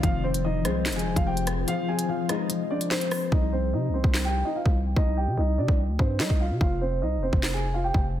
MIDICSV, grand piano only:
0, 0, Header, 1, 2, 480
1, 0, Start_track
1, 0, Key_signature, -3, "minor"
1, 0, Tempo, 410959
1, 40, Time_signature, 4, 2, 24, 8
1, 9578, End_track
2, 0, Start_track
2, 0, Title_t, "Grand piano"
2, 0, Program_c, 0, 0
2, 40, Note_on_c, 0, 77, 103
2, 49, Note_on_c, 0, 65, 81
2, 266, Note_off_c, 0, 77, 0
2, 271, Note_off_c, 0, 65, 0
2, 278, Note_on_c, 0, 72, 79
2, 288, Note_on_c, 0, 60, 62
2, 505, Note_off_c, 0, 72, 0
2, 510, Note_off_c, 0, 60, 0
2, 520, Note_on_c, 0, 75, 88
2, 530, Note_on_c, 0, 63, 66
2, 746, Note_off_c, 0, 75, 0
2, 752, Note_off_c, 0, 63, 0
2, 759, Note_on_c, 0, 72, 81
2, 768, Note_on_c, 0, 60, 63
2, 1097, Note_off_c, 0, 72, 0
2, 1102, Note_off_c, 0, 60, 0
2, 1120, Note_on_c, 0, 80, 81
2, 1129, Note_on_c, 0, 68, 61
2, 1346, Note_off_c, 0, 80, 0
2, 1351, Note_off_c, 0, 68, 0
2, 1360, Note_on_c, 0, 77, 91
2, 1369, Note_on_c, 0, 65, 70
2, 1473, Note_off_c, 0, 77, 0
2, 1477, Note_off_c, 0, 65, 0
2, 1479, Note_on_c, 0, 79, 86
2, 1489, Note_on_c, 0, 67, 68
2, 1706, Note_off_c, 0, 79, 0
2, 1711, Note_off_c, 0, 67, 0
2, 1960, Note_on_c, 0, 77, 109
2, 1969, Note_on_c, 0, 65, 81
2, 2186, Note_off_c, 0, 77, 0
2, 2191, Note_off_c, 0, 65, 0
2, 2200, Note_on_c, 0, 80, 83
2, 2210, Note_on_c, 0, 68, 62
2, 2427, Note_off_c, 0, 80, 0
2, 2431, Note_off_c, 0, 68, 0
2, 2440, Note_on_c, 0, 77, 80
2, 2450, Note_on_c, 0, 65, 63
2, 2666, Note_off_c, 0, 77, 0
2, 2672, Note_off_c, 0, 65, 0
2, 2680, Note_on_c, 0, 75, 80
2, 2690, Note_on_c, 0, 63, 65
2, 2906, Note_off_c, 0, 75, 0
2, 2911, Note_off_c, 0, 63, 0
2, 3159, Note_on_c, 0, 74, 80
2, 3169, Note_on_c, 0, 62, 65
2, 3386, Note_off_c, 0, 74, 0
2, 3391, Note_off_c, 0, 62, 0
2, 3399, Note_on_c, 0, 72, 90
2, 3408, Note_on_c, 0, 60, 65
2, 3850, Note_off_c, 0, 72, 0
2, 3855, Note_off_c, 0, 60, 0
2, 3879, Note_on_c, 0, 75, 88
2, 3889, Note_on_c, 0, 63, 72
2, 4106, Note_off_c, 0, 75, 0
2, 4111, Note_off_c, 0, 63, 0
2, 4119, Note_on_c, 0, 72, 86
2, 4129, Note_on_c, 0, 60, 67
2, 4346, Note_off_c, 0, 72, 0
2, 4351, Note_off_c, 0, 60, 0
2, 4360, Note_on_c, 0, 75, 82
2, 4369, Note_on_c, 0, 63, 66
2, 4586, Note_off_c, 0, 75, 0
2, 4591, Note_off_c, 0, 63, 0
2, 4600, Note_on_c, 0, 72, 79
2, 4609, Note_on_c, 0, 60, 66
2, 4938, Note_off_c, 0, 72, 0
2, 4943, Note_off_c, 0, 60, 0
2, 4959, Note_on_c, 0, 79, 78
2, 4968, Note_on_c, 0, 67, 60
2, 5186, Note_off_c, 0, 79, 0
2, 5191, Note_off_c, 0, 67, 0
2, 5199, Note_on_c, 0, 75, 82
2, 5209, Note_on_c, 0, 63, 64
2, 5312, Note_off_c, 0, 75, 0
2, 5318, Note_off_c, 0, 63, 0
2, 5319, Note_on_c, 0, 77, 78
2, 5329, Note_on_c, 0, 65, 58
2, 5546, Note_off_c, 0, 77, 0
2, 5551, Note_off_c, 0, 65, 0
2, 5799, Note_on_c, 0, 75, 103
2, 5808, Note_on_c, 0, 63, 78
2, 6026, Note_off_c, 0, 75, 0
2, 6031, Note_off_c, 0, 63, 0
2, 6039, Note_on_c, 0, 79, 81
2, 6048, Note_on_c, 0, 67, 59
2, 6266, Note_off_c, 0, 79, 0
2, 6271, Note_off_c, 0, 67, 0
2, 6279, Note_on_c, 0, 75, 78
2, 6289, Note_on_c, 0, 63, 67
2, 6506, Note_off_c, 0, 75, 0
2, 6511, Note_off_c, 0, 63, 0
2, 6519, Note_on_c, 0, 74, 81
2, 6529, Note_on_c, 0, 62, 65
2, 6746, Note_off_c, 0, 74, 0
2, 6751, Note_off_c, 0, 62, 0
2, 6999, Note_on_c, 0, 72, 77
2, 7009, Note_on_c, 0, 60, 64
2, 7226, Note_off_c, 0, 72, 0
2, 7231, Note_off_c, 0, 60, 0
2, 7239, Note_on_c, 0, 75, 84
2, 7248, Note_on_c, 0, 63, 60
2, 7466, Note_off_c, 0, 75, 0
2, 7471, Note_off_c, 0, 63, 0
2, 7479, Note_on_c, 0, 77, 83
2, 7488, Note_on_c, 0, 65, 62
2, 7702, Note_off_c, 0, 77, 0
2, 7711, Note_off_c, 0, 65, 0
2, 7719, Note_on_c, 0, 77, 98
2, 7729, Note_on_c, 0, 65, 75
2, 7946, Note_off_c, 0, 77, 0
2, 7951, Note_off_c, 0, 65, 0
2, 7959, Note_on_c, 0, 72, 77
2, 7968, Note_on_c, 0, 60, 60
2, 8185, Note_off_c, 0, 72, 0
2, 8190, Note_off_c, 0, 60, 0
2, 8199, Note_on_c, 0, 75, 82
2, 8208, Note_on_c, 0, 63, 64
2, 8425, Note_off_c, 0, 75, 0
2, 8431, Note_off_c, 0, 63, 0
2, 8440, Note_on_c, 0, 72, 79
2, 8449, Note_on_c, 0, 60, 60
2, 8778, Note_off_c, 0, 72, 0
2, 8783, Note_off_c, 0, 60, 0
2, 8801, Note_on_c, 0, 80, 80
2, 8810, Note_on_c, 0, 68, 60
2, 9027, Note_off_c, 0, 80, 0
2, 9032, Note_off_c, 0, 68, 0
2, 9040, Note_on_c, 0, 77, 89
2, 9049, Note_on_c, 0, 65, 68
2, 9153, Note_off_c, 0, 77, 0
2, 9158, Note_off_c, 0, 65, 0
2, 9159, Note_on_c, 0, 79, 83
2, 9168, Note_on_c, 0, 67, 64
2, 9386, Note_off_c, 0, 79, 0
2, 9391, Note_off_c, 0, 67, 0
2, 9578, End_track
0, 0, End_of_file